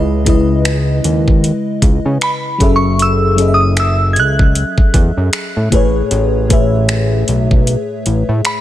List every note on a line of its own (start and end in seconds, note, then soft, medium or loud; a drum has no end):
0.00 1.01 C#2 loud
0.00 0.18 C#3 medium
0.00 0.19 G#3 medium
0.00 0.19 E4 medium
0.00 0.20 B4 medium
0.00 0.20 D#5 medium
0.25 1.46 C#3 medium
0.25 1.47 G#3 medium
0.25 1.47 E4 medium
0.25 1.48 B4 medium
0.25 kick medium
0.25 closed hi-hat medium
0.29 1.48 D#5 loud
0.65 finger snap loud
0.65 closed hi-hat medium
1.04 1.52 D#2 medium
1.04 closed hi-hat medium
1.28 kick medium
1.44 closed hi-hat medium
1.82 2.00 C#2 medium
1.82 kick medium
1.82 closed hi-hat medium
2.05 2.18 C#3 medium
2.21 2.76 B5 medium
2.21 finger snap loud
2.21 closed hi-hat medium
2.58 4.18 F#1 loud
2.58 3.24 F#3 medium
2.58 3.25 C#4 medium
2.58 3.25 G#4 medium
2.58 3.26 A4 medium
2.58 kick loud
2.58 closed hi-hat medium
2.63 3.27 E5 medium
2.76 3.01 C#6 medium
2.99 3.49 E6 medium
2.99 closed hi-hat medium
3.36 4.58 F#3 medium
3.36 4.58 C#4 medium
3.36 4.59 G#4 medium
3.36 4.60 A4 medium
3.36 closed hi-hat medium
3.41 3.47 D#5 medium
3.48 4.63 E5 medium
3.54 3.79 D#6 medium
3.77 4.09 E6 medium
3.77 finger snap loud
3.77 closed hi-hat medium
4.13 4.64 C#2 medium
4.13 4.18 G#6 medium
4.13 closed hi-hat medium
4.20 5.70 F#6 loud
4.39 kick medium
4.55 closed hi-hat medium
4.78 kick loud
4.94 5.12 E2 loud
4.94 kick medium
4.94 closed hi-hat medium
5.17 5.30 F#2 loud
5.33 finger snap loud
5.33 closed hi-hat medium
5.57 5.69 A2 medium
5.70 6.03 A1 medium
5.70 6.36 A2 medium
5.70 6.37 A3 medium
5.70 6.37 G#4 medium
5.70 6.38 B4 medium
5.70 kick loud
5.70 closed hi-hat medium
5.75 6.38 C#5 loud
6.11 7.24 A1 loud
6.11 closed hi-hat medium
6.48 7.70 A2 medium
6.48 7.70 A3 medium
6.48 7.71 G#4 medium
6.48 7.71 B4 medium
6.48 kick medium
6.48 closed hi-hat medium
6.53 7.72 E5 medium
6.89 finger snap loud
6.89 closed hi-hat medium
7.28 7.76 B1 medium
7.28 closed hi-hat medium
7.51 kick medium
7.67 closed hi-hat medium
8.06 8.24 A1 medium
8.06 closed hi-hat medium
8.29 8.41 A2 loud
8.45 8.61 B5 medium
8.45 finger snap loud
8.45 closed hi-hat medium